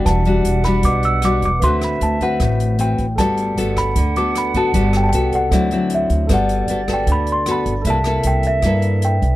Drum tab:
HH |xxxxxxxx|xxxxxxxx|xxxxxxxx|xxxxxxxx|
SD |r--r--r-|-r--r---|r--r--r-|-r--r---|
BD |o--oo--o|o--oo--o|o--oo--o|o--oo--o|

HH |xxxxxxxx|xxxxxxxx|
SD |r--r--r-|-r--r---|
BD |o--oo--o|o--oo--o|